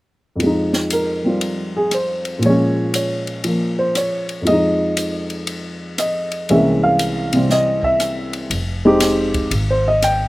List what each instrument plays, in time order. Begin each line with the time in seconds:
0.36 grand piano F2 F3
0.40 grand piano G#3, ride
0.46 grand piano D#4
0.73 snare
0.90 grand piano A#4, hi-hat pedal, ride
1.24 grand piano G3 C4 F4
1.41 ride
1.76 grand piano G#4
1.91 grand piano C5, cross-stick, hi-hat pedal, ride
2.25 ride
2.39 grand piano A#2 F3, ride
2.46 grand piano G#3 C#4 C#5
2.94 grand piano C#5, hi-hat pedal, ride
3.27 ride
3.44 grand piano F3 A#3, ride
3.79 grand piano C5
3.95 grand piano C#5, cross-stick, hi-hat pedal, ride
4.29 ride
4.42 grand piano F2 F3
4.47 grand piano G#3 D#5, ride
4.53 grand piano D#4
4.97 hi-hat pedal, ride
5.30 ride
5.47 ride
5.98 grand piano D#5, cross-stick, hi-hat pedal, ride
6.32 ride
6.49 grand piano C2 C3 E3 G#3 A#3 C#4 E5, ride
6.83 grand piano F5
6.99 hi-hat pedal, ride
7.33 grand piano C3 G3 C4, ride
7.50 grand piano D#5, snare
7.83 grand piano E5, kick
8.00 cross-stick, hi-hat pedal, ride
8.33 ride
8.50 upright bass F1, ride
8.85 grand piano G#3 C4 D#4 G4
9.00 snare, hi-hat pedal, ride
9.34 kick, ride
9.51 upright bass G#1, ride
9.70 grand piano C5
9.88 grand piano D#5
10.02 grand piano G5, cross-stick, hi-hat pedal, ride